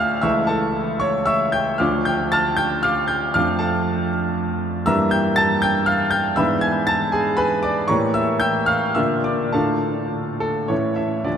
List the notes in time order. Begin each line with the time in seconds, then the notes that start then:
Already playing: D2 F3 A3 D4 D5 E5 F5 G5 A5 D6 E6 F6 G6
0.21 C#2 E3 A3 E4 E5 C#6 E6
0.47 A4 E5 A5
1.00 C#5 C#6
1.26 E5 C#6 E6
1.52 G5 G6
1.78 D2 F3 A3 D4 F5 D6 F6
2.05 G5 G6
2.32 A5 F6 A6
2.57 G5 G6
2.83 F5 D6 F6
3.08 G5 G6
3.34 F2 F3 A3 D4 F5 D6 F6
3.59 A4 F5 A5
4.86 G2 E3 A#3 D4 E5 A#5 E6
5.11 G5 G6
5.36 A5 A6
5.62 G5 G6
5.86 F5 F6
6.11 G5 G6
6.36 G#2 E3 B3 D4 E5 B5 E6
6.61 G#5 G#6
6.87 A5 A6
7.12 G#4 G#5
7.37 B4 G#5 B5
7.63 D5 D6
7.88 A2 E3 A#3 G4 C#5 A#5 C#6
8.14 E5 E6
8.40 G5 E6 G6
8.66 F5 F6
8.95 A#2 D3 A#3 F4 E5 E6
9.24 D5 D6
9.53 A2 D3 D4 F4 A4 F5 A5
10.40 A4
10.68 A2 E3 C#4 E4 C#5
10.96 E5
11.24 D2 F3 A3 D4 D5